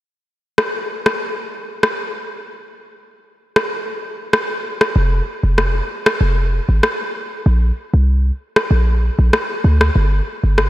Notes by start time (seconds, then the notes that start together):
0.58 cross-stick
1.06 cross-stick
1.83 cross-stick
3.56 cross-stick
4.33 cross-stick
4.81 cross-stick
4.96 F1
5.43 F1
5.58 cross-stick
6.06 cross-stick
6.21 F1
6.69 G#1
6.83 cross-stick
7.46 A#1
7.94 C2
8.56 cross-stick
8.71 A#1
9.19 A#1
9.33 cross-stick
9.64 D2
9.81 cross-stick
9.96 G1
10.44 G1
10.58 cross-stick